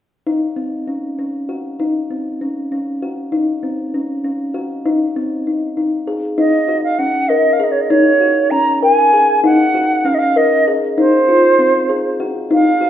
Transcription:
0.27 kalimba D#4
0.56 kalimba C4
0.87 kalimba C#4
1.19 kalimba C#4
1.49 kalimba F#4
1.80 kalimba D#4
2.10 kalimba C4
2.41 kalimba C#4
2.72 kalimba C#4
3.02 kalimba F#4
3.32 kalimba D#4
3.63 kalimba C4
3.94 kalimba C#4
4.24 kalimba C#4
4.54 kalimba F#4
4.86 kalimba D#4
5.16 kalimba C4
5.47 kalimba D#4
5.77 kalimba D#4
6.07 kalimba G#4
6.38 kalimba D#4, flute D#5
6.68 kalimba F#4
6.84 flute F5
6.99 kalimba C#4, flute F#5
7.29 kalimba A#4, flute D#5
7.53 flute F5
7.60 kalimba G#4, flute D#5
7.72 flute C#5
7.81 flute D#5
7.90 kalimba D#4, flute C#5
8.21 kalimba F#4
8.51 kalimba C#4, flute A#5
8.82 kalimba A#4, flute G#5
9.13 kalimba G#4
9.44 kalimba D#4, flute F#5
9.74 kalimba F#4
10.05 kalimba C#4, flute F5
10.14 flute D#5
10.19 flute F5
10.36 kalimba A#4, flute D#5
10.68 kalimba G#4
10.98 kalimba D#4, flute C5
11.28 kalimba F4
11.59 kalimba C4
11.89 kalimba G#4
12.20 kalimba F#4
12.51 kalimba D#4, flute F5
12.81 kalimba F#4

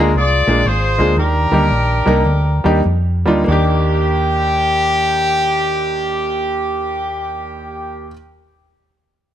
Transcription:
Already playing: fingered electric bass D2, horn section D4 F4 A#4
0.00 grand piano F4 G#4
0.15 fingered electric bass C2, horn section F4 G#4 D5
0.47 fingered electric bass A#1, grand piano G#3 A#3 D4 F4 G#4
0.65 fingered electric bass G#1, horn section F4 G#4 C5
0.98 fingered electric bass D2, grand piano G#3 A#3 D4 F4 G#4
1.17 fingered electric bass D#2, grand piano D#3, horn section D4 G4 A#4
1.52 fingered electric bass D2, grand piano G3 A#3 D4 D#4 G4
1.71 fingered electric bass A#1
2.06 fingered electric bass C2, grand piano G3 A#3 D4 D#4 A#4
2.26 fingered electric bass D2
2.64 fingered electric bass D#2, grand piano G3 A#3 D4 D#4 G4
2.85 fingered electric bass F2
3.25 fingered electric bass D2, grand piano G3 A#3 D4 D#4 F4
3.44 fingered electric bass D#2, grand piano A#3 D4, horn section G4
3.48 grand piano D#2 D#4 G4

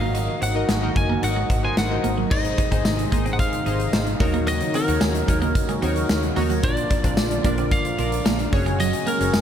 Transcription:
Already playing: fingered electric bass G#1, synth keys G#2 D#4 F#4 A#4 D#5, analog synth pad D#3 F#3 A#3 F#4, lead electric guitar F5
0.01 clean electric guitar A#3
0.15 clean electric guitar D#4, closed hi-hat
0.28 muted clean electric guitar stroke
0.42 fingered electric bass G#1, clean electric guitar C4, lead electric guitar F#5, closed hi-hat
0.55 synth keys D#4 F#4 A#4 D#5
0.69 fingered electric bass G#1, clean electric guitar G#3, snare, closed hi-hat
0.82 synth keys D#4 F#4 A#4 D#5
0.96 fingered electric bass F#1, lead electric guitar G#5, muted clean electric guitar stroke, kick, closed hi-hat
1.10 clean electric guitar A#3
1.22 fingered electric bass G#1, synth keys D#4 F#4 A#4 D#5, lead electric guitar F#5, muted clean electric guitar stroke, closed hi-hat
1.36 clean electric guitar G#3
1.50 fingered electric bass G#1, clean electric guitar C4, kick, closed hi-hat
1.63 synth keys D#4 F#4 A#4 C5, lead electric guitar G#5
1.77 fingered electric bass G#1, lead electric guitar F#5, muted clean electric guitar stroke, snare, closed hi-hat
1.90 synth keys D#4 F#4 A#4 D#5
2.04 fingered electric bass G#1, clean electric guitar A#3, closed hi-hat
2.18 clean electric guitar F#3
2.31 fingered electric bass G#1, synth keys G#2 D#4 G#4 C5 D#5, analog synth pad C3 D#3 D#4, lead electric guitar D#5, kick, crash
2.45 muted clean electric guitar stroke, closed hi-hat
2.58 clean electric guitar D#4, kick, closed hi-hat
2.71 fingered electric bass G#1, clean electric guitar C4, synth keys D#4 G#4 C5 D#5, kick, closed hi-hat
2.85 fingered electric bass G#1, muted clean electric guitar stroke, snare, tambourine
2.99 closed hi-hat
3.12 fingered electric bass G#1, clean electric guitar A#3, synth keys D#4 G#4 C5 D#5, kick, closed hi-hat
3.26 clean electric guitar C4, closed hi-hat
3.33 lead electric guitar F#5
3.39 lead electric guitar F5, kick, closed hi-hat
3.53 closed hi-hat
3.66 fingered electric bass G#1, synth keys D#4 G#4 C5 D#5, clean electric guitar D#4, closed hi-hat
3.80 closed hi-hat
3.93 fingered electric bass G#1, clean electric guitar C4, snare, tambourine
4.07 closed hi-hat
4.20 fingered electric bass D#2, analog synth pad C#3 F#3 A#3, synth keys D#3 D#4 F#4 A#4 C#5, muted clean electric guitar stroke, kick, open hi-hat
4.34 clean electric guitar A#3, closed hi-hat
4.47 clean electric guitar D#4, lead electric guitar D#5, closed hi-hat
4.61 muted clean electric guitar stroke, closed hi-hat
4.74 clean electric guitar C4, lead electric guitar A#4, closed hi-hat
4.87 fingered electric bass D#2, synth keys D#4 F#4 A#4 C#5, closed hi-hat
5.01 fingered electric bass D#2, clean electric guitar G#3, snare, tambourine
5.15 closed hi-hat
5.28 fingered electric bass D#2, synth keys D#4 F#4 A#4 C#5, muted clean electric guitar stroke, kick, closed hi-hat
5.42 clean electric guitar A#3, closed hi-hat
5.55 muted clean electric guitar stroke, kick, closed hi-hat
5.69 clean electric guitar G#3, closed hi-hat
5.82 fingered electric bass D#2, clean electric guitar C4, synth keys D#4 F#4 A#4 C#5, closed hi-hat
5.96 closed hi-hat
6.09 fingered electric bass D#2, muted clean electric guitar stroke, snare, tambourine
6.23 closed hi-hat
6.36 fingered electric bass D#2, clean electric guitar A#3, synth keys D#4 F#4 A#4 C#5, open hi-hat
6.50 clean electric guitar F#3, closed hi-hat
6.63 fingered electric bass A#1, synth keys A#2 D4 F4 A#4 D5, analog synth pad D3 F3 F4, lead electric guitar D5, kick, closed hi-hat
6.77 muted clean electric guitar stroke, closed hi-hat
6.90 clean electric guitar D4, kick, closed hi-hat
7.04 fingered electric bass A#1, clean electric guitar C4, synth keys D4 F4 A#4 D5, kick, closed hi-hat
7.17 fingered electric bass A#1, muted clean electric guitar stroke, snare, tambourine
7.31 closed hi-hat
7.44 fingered electric bass A#1, clean electric guitar A#3, synth keys D4 F4 A#4 D5, kick, closed hi-hat
7.58 clean electric guitar C4, closed hi-hat
7.71 lead electric guitar F5, kick, closed hi-hat
7.85 closed hi-hat
7.98 fingered electric bass A#1, synth keys D4 F4 A#4 D5, clean electric guitar D4, closed hi-hat
8.12 closed hi-hat
8.26 fingered electric bass A#1, clean electric guitar A#3, snare, tambourine
8.39 closed hi-hat
8.53 fingered electric bass F#1, analog synth pad C#3 F#3 G#3 F#4, synth keys C#4 F#4 G#4 C#5, muted clean electric guitar stroke, kick, open hi-hat
8.66 clean electric guitar G#3, closed hi-hat
8.80 clean electric guitar F#3, lead electric guitar D#5, closed hi-hat
8.93 muted clean electric guitar stroke, closed hi-hat
9.07 clean electric guitar A#3, lead electric guitar A#4, closed hi-hat
9.20 fingered electric bass F#1, synth keys C#4 F#4 G#4 C#5, closed hi-hat
9.34 fingered electric bass F#1, clean electric guitar G#3, snare, tambourine

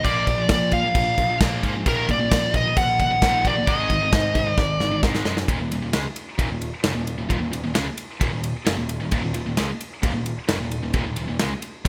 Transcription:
0.03 picked electric bass A#1, distorted electric guitar A#2 F3 A#3, lead electric guitar D5, kick, crash
0.26 picked electric bass A#1, distorted electric guitar A#2 F3, kick, crash
0.38 distorted electric guitar A#2 F3
0.49 picked electric bass A#2, distorted electric guitar A#2 F3, lead electric guitar D5, kick, snare, crash
0.71 distorted electric guitar A#2 F3, lead electric guitar F5, kick, crash
0.84 distorted electric guitar A#2 F3
0.95 picked electric bass A#1, distorted electric guitar A#2 F3, kick, crash
1.18 picked electric bass A#1, distorted electric guitar A#2 F3, kick, crash
1.29 distorted electric guitar A#2 F3
1.41 picked electric bass A#1, distorted electric guitar A#2 F3 A#3, kick, snare, crash
1.63 picked electric bass G#2, distorted electric guitar A#2 F3 A#3, kick, crash
1.74 distorted electric guitar A#2 F3
1.86 picked electric bass A#1, distorted electric guitar D#2 A#2 D#3, lead electric guitar A#4, kick, crash
2.08 picked electric bass A#1, distorted electric guitar D#2 A#2, lead electric guitar D5, kick, crash
2.20 distorted electric guitar D#2 A#2
2.31 picked electric bass A#1, distorted electric guitar D#2 A#2, kick, snare, crash
2.54 distorted electric guitar D#2 A#2, lead electric guitar D#5, kick, crash
2.65 distorted electric guitar D#2 A#2
2.77 picked electric bass A#1, distorted electric guitar D#2 A#2, lead electric guitar F#5, kick, crash
3.00 distorted electric guitar D#2 A#2, lead electric guitar F#5, kick, crash
3.10 distorted electric guitar D#2 A#2
3.22 picked electric bass A#1, distorted electric guitar D#2 A#2 D#3, kick, snare, crash
3.44 picked electric bass A#1, distorted electric guitar D#2 A#2 D#3, lead electric guitar D5, kick, crash
3.57 distorted electric guitar D#2 A#2
3.66 picked electric bass G#1, distorted electric guitar G#2 D#3 G#3, lead electric guitar D#5, kick, crash
3.90 picked electric bass G#1, distorted electric guitar G#2 D#3, kick, crash
4.00 distorted electric guitar G#2 D#3
4.12 distorted electric guitar G#2 D#3, picked electric bass G#2, kick, snare, crash
4.34 distorted electric guitar G#2 D#3, kick, crash
4.47 distorted electric guitar G#2 D#3
4.54 picked electric bass G#1, distorted electric guitar G#2, lead electric guitar D5, kick, snare
4.59 distorted electric guitar D#3
4.80 picked electric bass G#1, distorted electric guitar G#2 D#3, snare
4.91 distorted electric guitar G#2 D#3
5.03 picked electric bass G#1, distorted electric guitar G#2 D#3 G#3, kick, snare
5.15 snare
5.25 picked electric bass F#2, distorted electric guitar G#2 D#3 G#3, snare
5.37 distorted electric guitar G#2 D#3, snare
5.48 picked electric bass D#1, distorted electric guitar D#2 A#2, kick, ride
5.60 picked electric bass D#1, distorted electric guitar D#2 A#2
5.71 picked electric bass D#1, distorted electric guitar D#2 A#2, ride
5.82 picked electric bass D#1, distorted electric guitar D#2 A#2
5.93 picked electric bass C#2, distorted electric guitar C#3 G#3, snare, ride
6.05 muted picked electric bass stroke, muted distorted electric guitar stroke
6.16 ride
6.38 picked electric bass D#1, distorted electric guitar D#2 A#2, kick, ride
6.50 picked electric bass D#1, distorted electric guitar D#2 A#2
6.61 ride
6.83 picked electric bass F#1, distorted electric guitar F#2 C#3, snare, ride
6.95 picked electric bass D#1, distorted electric guitar D#2 A#2
7.07 ride
7.18 picked electric bass D#1, distorted electric guitar D#2 A#2
7.29 picked electric bass D#1, distorted electric guitar D#2 A#2, kick, ride
7.40 picked electric bass D#1, distorted electric guitar D#2 A#2
7.51 picked electric bass D#1, distorted electric guitar D#2 A#2, ride
7.63 picked electric bass D#1, distorted electric guitar D#2 A#2
7.74 picked electric bass C#2, distorted electric guitar C#3 G#3, snare, ride
7.86 muted distorted electric guitar stroke, muted picked electric bass stroke
7.98 ride
8.20 picked electric bass D#1, distorted electric guitar D#2 A#2, kick, ride
8.32 picked electric bass D#1, distorted electric guitar D#2 A#2
8.44 ride
8.65 picked electric bass F#1, distorted electric guitar F#2 C#3, snare, ride
8.77 picked electric bass D#1, distorted electric guitar D#2 A#2
8.89 ride
9.00 picked electric bass D#1, distorted electric guitar D#2 A#2
9.11 picked electric bass D#1, distorted electric guitar D#2 A#2, kick, ride
9.23 picked electric bass D#1, distorted electric guitar D#2 A#2
9.34 picked electric bass D#1, distorted electric guitar D#2 A#2, ride
9.46 picked electric bass D#1, distorted electric guitar D#2 A#2
9.57 picked electric bass C#2, distorted electric guitar C#3 G#3, snare, ride
9.70 muted distorted electric guitar stroke, muted picked electric bass stroke
9.81 ride
10.03 picked electric bass D#1, distorted electric guitar D#2 A#2, kick, ride
10.14 picked electric bass D#1, distorted electric guitar D#2 A#2
10.26 ride
10.48 picked electric bass F#1, distorted electric guitar F#2 C#3, snare, ride
10.59 picked electric bass D#1, distorted electric guitar D#2 A#2
10.71 ride
10.83 picked electric bass D#1, distorted electric guitar D#2 A#2
10.94 picked electric bass D#1, distorted electric guitar D#2 A#2, kick, ride
11.06 picked electric bass D#1, distorted electric guitar D#2 A#2
11.16 picked electric bass D#1, distorted electric guitar D#2 A#2, ride
11.28 picked electric bass D#1, distorted electric guitar D#2 A#2
11.39 picked electric bass C#2, distorted electric guitar C#3 G#3, snare, ride
11.51 muted distorted electric guitar stroke, muted picked electric bass stroke
11.62 ride
11.85 picked electric bass D#1, distorted electric guitar D#2

